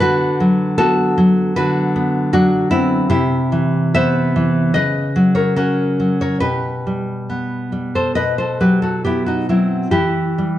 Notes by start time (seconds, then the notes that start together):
0.00 D3 F#4 B4
0.40 F#3
0.78 B3 F#4 A4
1.18 F#3
1.56 D3 F#4 B4
1.96 B3
2.33 F#3 D4 F#4
2.71 B3 C4 E4
3.10 C3 E4 G4
3.52 E3
3.95 B3 C5 E5
4.36 E3
4.74 C#3 B4 D#5
5.16 F#3
5.35 A#4 C#5
5.56 C#4 F#4 A#4
6.00 F#3
6.21 A#4 C#5
6.40 B2 G4 B4
6.87 G3
7.30 B3
7.72 G3
7.95 A4 C5
8.15 B2 B4 D#5
8.38 A4 C5
8.60 F#3 G4 B4
8.82 F#4 A4
9.04 B3 E4 G4
9.26 D#4 F#4
9.49 F#3 C4 E4
9.91 E3 E4 G4
10.38 G3